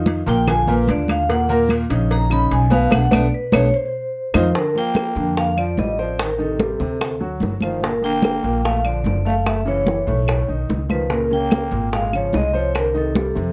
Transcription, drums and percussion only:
0.06 cowbell medium
0.06 high conga loud
0.28 cowbell medium
0.47 cowbell loud
0.47 high conga soft
0.47 low conga medium
0.47 claves medium
0.67 high conga soft
0.67 low conga medium
0.87 cowbell medium
0.87 high conga medium
1.08 cowbell medium
1.08 high conga medium
1.08 claves medium
1.29 cowbell loud
1.29 high conga soft
1.48 high conga soft
1.69 cowbell medium
1.69 high conga medium
1.69 claves medium
1.90 cowbell medium
1.90 high conga soft
2.11 cowbell loud
2.11 high conga soft
2.31 high conga soft
2.31 claves medium
2.51 cowbell medium
2.51 high conga soft
2.72 high conga loud
2.92 cowbell loud
2.92 high conga loud
2.92 claves loud
3.12 cowbell loud
3.12 high conga loud
3.12 claves medium
3.52 cowbell loud
3.52 high conga loud
3.52 claves loud
4.34 cowbell loud
4.34 high conga loud
4.34 claves loud
4.55 high bongo medium
4.55 high conga soft
4.75 high bongo soft
4.75 high conga soft
4.95 high bongo medium
4.95 high conga loud
4.95 claves medium
5.16 high bongo soft
5.16 high conga soft
5.37 high bongo medium
5.37 high conga soft
5.57 high conga soft
5.57 claves medium
5.77 high bongo soft
5.77 low bongo medium
5.77 high conga medium
5.99 high bongo soft
5.99 high conga soft
6.19 high bongo medium
6.19 high conga soft
6.19 claves medium
6.39 high bongo soft
6.39 high conga soft
6.60 high bongo medium
6.60 high conga medium
6.81 high bongo soft
6.81 high conga soft
7.01 high bongo medium
7.01 high conga soft
7.01 claves medium
7.21 high conga soft
7.40 high bongo soft
7.40 low bongo medium
7.40 high conga medium
7.60 high bongo soft
7.60 high conga medium
7.60 claves medium
7.81 high bongo medium
7.81 high conga soft
8.02 high bongo soft
8.02 high conga soft
8.22 high bongo medium
8.22 high conga medium
8.22 claves medium
8.44 high bongo soft
8.44 high conga soft
8.63 high bongo medium
8.63 high conga soft
8.85 high conga soft
8.85 claves medium
9.06 high bongo soft
9.06 low bongo medium
9.06 high conga medium
9.26 high bongo soft
9.26 high conga soft
9.46 high bongo medium
9.46 high conga soft
9.46 claves medium
9.67 high bongo soft
9.67 high conga soft
9.87 high bongo medium
9.87 high conga medium
10.08 high bongo soft
10.08 high conga soft
10.28 high bongo medium
10.28 high conga soft
10.28 claves medium
10.48 high conga soft
10.69 high bongo soft
10.69 low bongo medium
10.69 high conga medium
10.90 high bongo soft
10.90 high conga medium
10.90 claves medium
11.10 high bongo medium
11.10 high conga soft
11.31 high bongo soft
11.31 high conga soft
11.51 high bongo medium
11.51 high conga loud
11.51 claves medium
11.72 high bongo soft
11.72 high conga soft
11.92 high bongo medium
11.92 high conga soft
12.12 high conga soft
12.12 claves medium
12.33 high bongo soft
12.33 low bongo medium
12.33 high conga medium
12.54 high bongo soft
12.54 high conga soft
12.75 high bongo medium
12.75 high conga soft
12.75 claves medium
12.95 high bongo soft
12.95 high conga soft
13.15 high bongo medium
13.15 high conga loud
13.36 high bongo soft
13.36 high conga soft

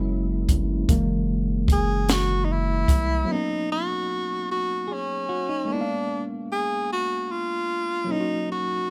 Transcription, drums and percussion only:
0.49 kick medium
0.49 closed hi-hat medium
0.89 kick loud
0.89 closed hi-hat medium
1.68 kick medium
1.68 closed hi-hat medium
2.09 snare loud
2.09 closed hi-hat medium
2.88 kick medium
2.88 closed hi-hat medium

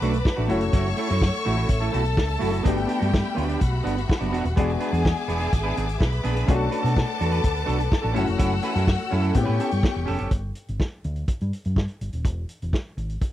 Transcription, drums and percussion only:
0.02 closed hi-hat medium
0.13 closed hi-hat medium
0.25 kick loud
0.25 snare loud
0.49 closed hi-hat medium
0.61 closed hi-hat medium
0.73 kick loud
0.73 closed hi-hat loud
0.86 closed hi-hat soft
0.97 closed hi-hat medium
1.10 snare soft
1.10 closed hi-hat soft
1.21 kick loud
1.21 snare medium
1.33 closed hi-hat soft
1.46 open hi-hat medium
1.57 closed hi-hat soft
1.69 kick medium
1.69 closed hi-hat medium
1.81 closed hi-hat soft
1.94 closed hi-hat medium
2.05 closed hi-hat soft
2.17 kick loud
2.17 snare loud
2.28 closed hi-hat soft
2.41 open hi-hat medium
2.53 closed hi-hat soft
2.66 kick loud
2.66 closed hi-hat medium
2.78 closed hi-hat soft
2.89 closed hi-hat medium
3.02 closed hi-hat soft
3.14 kick loud
3.14 snare loud
3.38 closed hi-hat medium
3.49 closed hi-hat soft
3.61 kick medium
3.61 closed hi-hat medium
3.87 closed hi-hat medium
3.98 closed hi-hat medium
4.09 kick loud
4.09 snare loud
4.22 closed hi-hat soft
4.34 closed hi-hat medium
4.45 closed hi-hat medium
4.57 kick loud
4.57 closed hi-hat medium
4.70 closed hi-hat soft
4.81 closed hi-hat medium
4.94 closed hi-hat soft
5.05 kick loud
5.05 snare loud
5.17 closed hi-hat soft
5.29 closed hi-hat medium
5.41 closed hi-hat soft
5.53 kick loud
5.53 closed hi-hat medium
5.77 closed hi-hat medium
5.89 closed hi-hat soft
6.01 kick loud
6.01 snare loud
6.12 closed hi-hat soft
6.24 closed hi-hat medium
6.36 closed hi-hat medium
6.48 kick loud
6.48 closed hi-hat medium
6.72 closed hi-hat medium
6.85 snare soft
6.85 closed hi-hat medium
6.97 kick loud
6.97 snare loud
7.21 closed hi-hat medium
7.32 closed hi-hat soft
7.44 kick loud
7.44 closed hi-hat medium
7.56 closed hi-hat soft
7.69 closed hi-hat medium
7.80 closed hi-hat medium
7.92 kick loud
7.92 snare loud
8.16 closed hi-hat medium
8.27 closed hi-hat medium
8.39 kick loud
8.39 closed hi-hat loud
8.63 closed hi-hat medium
8.76 snare soft
8.76 closed hi-hat soft
8.88 kick loud
8.88 snare loud
8.99 closed hi-hat soft
9.11 open hi-hat medium
9.23 closed hi-hat soft
9.34 kick loud
9.34 closed hi-hat medium
9.60 closed hi-hat medium
9.71 closed hi-hat medium
9.83 kick loud
9.83 snare loud
10.07 open hi-hat medium
10.19 closed hi-hat medium
10.31 kick loud
10.31 closed hi-hat medium
10.55 closed hi-hat medium
10.68 closed hi-hat soft
10.80 kick loud
10.80 snare medium
11.04 closed hi-hat soft
11.16 closed hi-hat soft
11.28 kick medium
11.28 closed hi-hat medium
11.41 closed hi-hat soft
11.53 closed hi-hat medium
11.65 closed hi-hat soft
11.76 kick medium
11.76 snare medium
11.88 closed hi-hat soft
12.01 closed hi-hat medium
12.13 closed hi-hat medium
12.25 kick loud
12.25 closed hi-hat medium
12.49 closed hi-hat medium
12.62 closed hi-hat soft
12.73 kick medium
12.73 snare medium
12.98 closed hi-hat soft
13.10 closed hi-hat soft
13.21 kick medium
13.21 closed hi-hat medium

